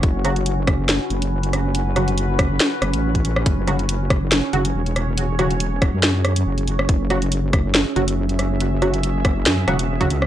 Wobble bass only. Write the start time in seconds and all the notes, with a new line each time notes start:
0.03 F#1
1.10 F#1
2.82 F#1
2.93 A1
3.46 F#1
4.53 F#1
4.75 E1
5.93 F#2
6.46 F#1
6.89 F#1
7.96 F#1
9.46 F#2
9.68 E1
10.10 C#2